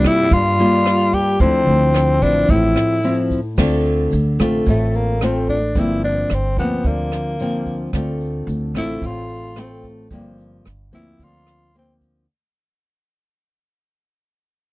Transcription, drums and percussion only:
0.04 kick, cross-stick, closed hi-hat, shaker
0.31 kick, closed hi-hat, shaker
0.58 closed hi-hat, shaker
0.85 cross-stick, closed hi-hat, shaker
1.13 kick, closed hi-hat, shaker
1.39 kick, closed hi-hat, shaker
1.67 closed hi-hat, shaker
1.94 cross-stick, closed hi-hat, shaker
2.21 kick, closed hi-hat, shaker
2.49 kick, closed hi-hat, shaker
2.76 cross-stick, closed hi-hat, shaker
3.03 closed hi-hat, shaker
3.31 kick, closed hi-hat, shaker
3.57 kick, cross-stick, crash, shaker
3.84 closed hi-hat, shaker
4.12 closed hi-hat, shaker
4.39 kick, cross-stick, closed hi-hat, shaker
4.66 kick, closed hi-hat, shaker
4.94 closed hi-hat, shaker
5.21 cross-stick, closed hi-hat, shaker
5.48 kick, closed hi-hat, shaker
5.75 kick, closed hi-hat, shaker
6.03 closed hi-hat, shaker
6.30 cross-stick, closed hi-hat, shaker
6.57 kick, closed hi-hat, shaker
6.84 kick, closed hi-hat, shaker
7.12 cross-stick, closed hi-hat, shaker
7.39 closed hi-hat, shaker
7.66 kick, closed hi-hat, shaker
7.93 kick, cross-stick, closed hi-hat, shaker
8.20 closed hi-hat, shaker
8.47 closed hi-hat, shaker
8.75 kick, cross-stick, closed hi-hat, shaker
9.02 kick, closed hi-hat, shaker
9.29 closed hi-hat, shaker
9.56 cross-stick, closed hi-hat, shaker
9.83 kick, closed hi-hat, shaker
10.11 kick, closed hi-hat, shaker
10.38 closed hi-hat, shaker
10.65 cross-stick, closed hi-hat, shaker
10.92 kick, closed hi-hat, shaker
11.19 kick, closed hi-hat, shaker
11.47 cross-stick, shaker
11.74 closed hi-hat, shaker
12.01 kick, closed hi-hat, shaker

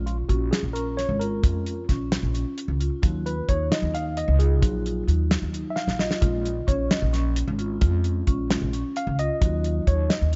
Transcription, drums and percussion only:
0.07 closed hi-hat
0.29 kick, closed hi-hat
0.53 snare, closed hi-hat
0.75 closed hi-hat, shaker
0.99 snare, closed hi-hat
1.21 closed hi-hat
1.44 kick, closed hi-hat, shaker
1.66 closed hi-hat
1.89 kick, snare, closed hi-hat
2.12 snare, closed hi-hat
2.34 closed hi-hat, shaker
2.58 closed hi-hat
2.81 closed hi-hat
3.03 kick, closed hi-hat, shaker
3.26 closed hi-hat
3.49 kick, closed hi-hat
3.72 snare, closed hi-hat
3.95 closed hi-hat, shaker
4.17 closed hi-hat
4.40 closed hi-hat
4.63 kick, closed hi-hat, shaker
4.86 closed hi-hat, shaker
5.08 closed hi-hat
5.31 snare, closed hi-hat
5.54 closed hi-hat
5.76 snare
5.88 snare
5.99 snare
6.11 snare
6.22 kick, closed hi-hat, shaker
6.46 closed hi-hat
6.68 kick, closed hi-hat
6.91 snare, closed hi-hat
7.13 snare, closed hi-hat, shaker
7.36 closed hi-hat
7.59 closed hi-hat
7.81 kick, closed hi-hat, shaker
8.04 closed hi-hat
8.27 kick, closed hi-hat
8.50 snare, closed hi-hat
8.73 closed hi-hat, shaker
8.96 closed hi-hat
9.19 closed hi-hat
9.42 kick, closed hi-hat, shaker
9.64 closed hi-hat
9.87 kick, closed hi-hat
10.10 snare, closed hi-hat

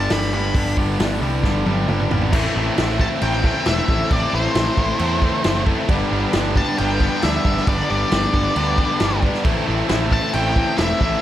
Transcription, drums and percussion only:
0.10 snare, open hi-hat
0.55 kick, open hi-hat
0.77 kick
1.00 snare, open hi-hat
1.44 kick, snare
1.66 high tom
1.89 mid tom
2.00 mid tom
2.11 floor tom
2.22 floor tom
2.33 kick, crash
2.78 snare, crash
2.89 snare
3.00 kick
3.21 crash
3.44 kick
3.66 snare, crash
3.88 kick
4.11 kick, crash
4.55 snare, crash
4.77 kick
4.99 crash
5.22 kick
5.44 snare, crash
5.67 kick
5.89 kick, crash
6.33 snare, crash
6.56 kick
6.78 crash
7.00 kick
7.22 snare, crash
7.45 kick
7.57 snare
7.67 kick, crash
8.12 snare, crash
8.23 snare
8.34 kick
8.56 crash
8.78 kick
9.00 snare, crash
9.23 kick
9.34 snare
9.45 kick, crash
9.89 snare, crash
10.11 kick
10.33 crash
10.56 kick
10.78 snare, crash
11.01 kick

